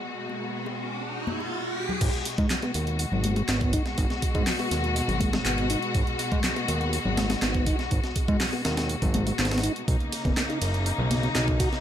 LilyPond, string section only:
\new Staff \with { instrumentName = "String section" } { \clef bass \time 4/4 \key gis \minor \tempo 4 = 122 <b, gis fis'>1 | <b, gis fis'>1~ | <b, gis fis'>1~ | <b, gis fis'>1~ |
<b, gis fis'>1 | <cis ais dis'>1 | }